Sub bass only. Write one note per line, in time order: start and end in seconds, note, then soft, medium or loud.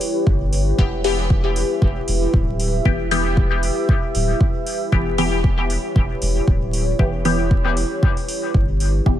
0.27 0.73 G1 loud
0.78 1.63 E1 loud
1.82 2.01 E1 medium
2.08 2.27 E1 medium
2.34 2.80 D1 medium
2.85 3.70 E1 medium
4.15 4.33 D1 medium
4.92 5.77 E1 medium
5.96 6.14 E1 medium
6.22 6.40 E1 medium
6.48 6.93 D1 medium
6.99 7.84 E1 medium
8.54 9.00 G1 loud
9.06 9.20 E1 loud